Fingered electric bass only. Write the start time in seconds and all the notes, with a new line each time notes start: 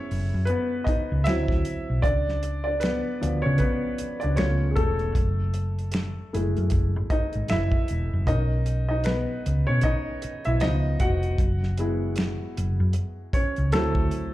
0.11 F#1
0.34 F#2
0.88 muted fingered electric bass stroke
1.12 C#2
1.28 D2
1.50 D2
1.90 B1
2.05 C#2
3.23 D2
3.46 C#3
4.01 muted fingered electric bass stroke
4.24 C#2
4.41 C#2
4.78 E1
5.16 F#1
6.35 F#1
6.57 F#2
6.73 F#1
6.96 G#1
7.35 G#1
7.52 F#1
7.91 E1
8.13 F#1
8.28 B1
9.46 C#2
9.69 B2
10.24 muted fingered electric bass stroke
10.47 B1
10.63 C#2
11.01 F1
11.40 F#1
12.58 F#1
12.80 F#2
13.35 muted fingered electric bass stroke
13.58 C#2
13.75 D2
13.96 D2